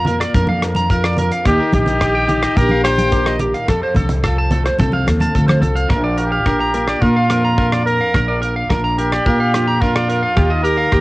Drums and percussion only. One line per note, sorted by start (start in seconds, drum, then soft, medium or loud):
0.05 closed hi-hat soft
0.05 low conga medium
0.21 cross-stick medium
0.21 closed hi-hat soft
0.35 kick medium
0.35 closed hi-hat medium
0.47 high conga medium
0.62 cross-stick medium
0.62 closed hi-hat medium
0.75 closed hi-hat medium
0.75 high conga medium
0.90 kick medium
0.90 closed hi-hat soft
1.04 cross-stick medium
1.17 closed hi-hat medium
1.17 low conga medium
1.32 closed hi-hat medium
1.45 kick medium
1.45 cross-stick medium
1.45 closed hi-hat medium
1.73 kick medium
1.73 closed hi-hat soft
1.73 high conga medium
1.86 closed hi-hat soft
1.86 low conga medium
2.01 kick medium
2.01 cross-stick medium
2.01 closed hi-hat soft
2.28 closed hi-hat medium
2.28 low conga medium
2.43 cross-stick medium
2.43 closed hi-hat soft
2.57 kick medium
2.57 closed hi-hat medium
2.69 high conga medium
2.85 cross-stick medium
2.85 closed hi-hat medium
2.98 closed hi-hat medium
2.98 high conga medium
3.12 kick medium
3.12 closed hi-hat medium
3.26 cross-stick medium
3.39 closed hi-hat soft
3.39 low conga medium
3.54 closed hi-hat medium
3.68 kick medium
3.68 cross-stick medium
3.68 closed hi-hat medium
3.94 kick medium
3.94 closed hi-hat soft
3.94 high conga medium
4.09 closed hi-hat soft
4.09 low conga medium
4.24 kick medium
4.24 cross-stick medium
4.24 closed hi-hat soft
4.51 closed hi-hat medium
4.51 low conga medium
4.65 cross-stick medium
4.65 closed hi-hat soft
4.78 kick medium
4.78 closed hi-hat soft
4.78 high conga medium
4.92 high conga medium
5.08 cross-stick medium
5.08 closed hi-hat medium
5.20 closed hi-hat medium
5.20 high conga medium
5.35 kick medium
5.35 closed hi-hat medium
5.48 cross-stick medium
5.48 high conga medium
5.62 closed hi-hat soft
5.62 low conga medium
5.76 closed hi-hat medium
5.90 kick medium
5.90 cross-stick medium
6.18 closed hi-hat soft
6.46 kick medium
6.46 cross-stick medium
6.74 closed hi-hat medium
6.88 cross-stick medium
7.02 kick medium
7.30 cross-stick medium
7.30 closed hi-hat medium
7.58 kick medium
7.73 cross-stick medium
7.87 closed hi-hat soft
8.14 kick medium
8.14 cross-stick medium
8.43 closed hi-hat soft
8.70 kick medium
8.70 cross-stick medium
8.98 closed hi-hat soft
9.12 cross-stick medium
9.26 kick medium
9.54 cross-stick medium
9.54 closed hi-hat soft
9.82 kick medium
9.96 cross-stick medium
10.09 closed hi-hat soft
10.37 kick medium
10.37 cross-stick medium
10.65 closed hi-hat soft
10.92 kick medium
10.92 cross-stick medium